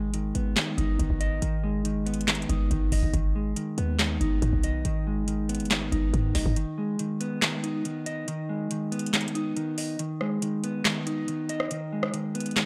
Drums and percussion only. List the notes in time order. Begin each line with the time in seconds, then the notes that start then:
0.14 closed hi-hat
0.35 closed hi-hat
0.56 snare, clap, closed hi-hat
0.78 kick, closed hi-hat
0.99 kick, closed hi-hat
1.10 kick
1.21 closed hi-hat
1.42 closed hi-hat
1.85 closed hi-hat
2.06 closed hi-hat
2.14 closed hi-hat
2.21 closed hi-hat
2.28 snare, clap, closed hi-hat
2.35 closed hi-hat
2.42 closed hi-hat
2.49 kick, closed hi-hat
2.71 kick, closed hi-hat
2.92 kick, open hi-hat
3.03 kick
3.14 kick, closed hi-hat
3.56 closed hi-hat
3.78 closed hi-hat
3.99 snare, clap, closed hi-hat
4.21 kick, closed hi-hat
4.42 kick, closed hi-hat
4.53 kick
4.63 closed hi-hat
4.85 closed hi-hat
5.28 closed hi-hat
5.49 closed hi-hat
5.55 closed hi-hat
5.60 closed hi-hat
5.65 closed hi-hat
5.71 snare, clap, closed hi-hat
5.92 kick, closed hi-hat
6.14 kick, closed hi-hat
6.35 kick, snare, open hi-hat
6.46 kick
6.56 closed hi-hat
6.99 closed hi-hat
7.21 closed hi-hat
7.42 snare, clap, closed hi-hat
7.64 closed hi-hat
7.85 closed hi-hat
8.06 closed hi-hat
8.28 closed hi-hat
8.71 closed hi-hat
8.92 closed hi-hat
8.99 closed hi-hat
9.06 closed hi-hat
9.14 snare, clap, closed hi-hat
9.21 closed hi-hat
9.28 closed hi-hat
9.35 closed hi-hat
9.57 closed hi-hat
9.78 open hi-hat
9.99 closed hi-hat
10.21 cross-stick
10.42 closed hi-hat
10.64 closed hi-hat
10.85 snare, clap, closed hi-hat
11.07 closed hi-hat
11.28 closed hi-hat
11.49 closed hi-hat
11.60 cross-stick
11.71 closed hi-hat
12.03 cross-stick
12.14 closed hi-hat
12.35 closed hi-hat
12.40 closed hi-hat
12.46 closed hi-hat
12.51 closed hi-hat
12.56 snare, clap, closed hi-hat